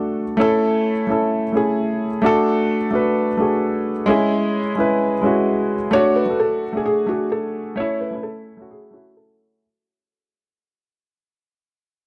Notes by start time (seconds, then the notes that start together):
Already playing: A3 D4 F#4 A4
0.37 A3 C#4 E4
0.41 A4
1.07 A3 C#4 E4
1.11 A4
1.52 A3 C#4 E4
1.57 G#4
2.22 A3 D4 F#4
2.26 A4
2.91 A3 D4 F#4
2.95 B4
3.37 A3 D4 F#4
3.42 G#4
4.06 G#3 C#4 E4
4.10 G#4
4.76 G#3 C#4 E4
4.80 B4
5.22 G#3 C#4 E4
5.26 F#4
5.91 A3 D4 C#5
5.95 F#4
6.16 B4
6.26 A3 D4
6.30 A4
6.40 A4
6.73 A3 D4
6.77 G#4
6.86 G#4
7.07 A3 D4 F#4
7.11 G#4
7.32 A4
7.76 A3 C#4 C#5
7.80 E4
8.01 B4
8.11 A3 C#4
8.15 E4
8.23 A4
8.57 A3 C#4
8.62 F#4
8.71 G#4
8.91 A3 C#4 F#4
8.95 E4
9.17 A4